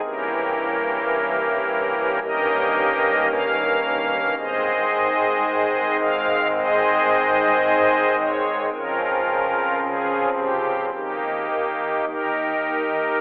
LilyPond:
<<
  \new Staff \with { instrumentName = "Pipe organ" } { \time 4/4 \key aes \major \tempo 4 = 55 <e' g' bes'>2 <g' bes' ees''>4 f''4 | <aes' c'' ees''>4. f''8 <aes' c'' ees''>4. des''8 | <des' f' bes'>4 <des' f' aes'>8 g'8 <bes ees' g'>4 <ees' g' bes'>4 | }
  \new Staff \with { instrumentName = "Pipe organ" } { \clef bass \time 4/4 \key aes \major <g,, g, e bes des'>2 <g,, g, ees bes des'>2 | <aes,, aes, ees aes c'>1 | <des,, des, des f c'>2 <ees,, ees, ees>2 | }
>>